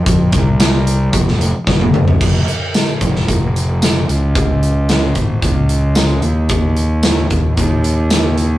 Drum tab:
CC |----------------|x---------------|----------------|----------------|
HH |x-x-x-x-x-x-----|--x-x-x-x-x-x-x-|x-x-x-x-x-x-x-x-|x-x-x-x-x-x-x-x-|
TB |----x-----------|----x-------x---|----x-------x---|----x-------x---|
SD |----o----o--o---|----o--o----o---|----o-------o---|----o-------o---|
T1 |-------------o--|----------------|----------------|----------------|
T2 |--------------o-|----------------|----------------|----------------|
FT |---------------o|----------------|----------------|----------------|
BD |o-o-----o---o---|o-----o-o-------|o-----o-o-------|o-----o-o-------|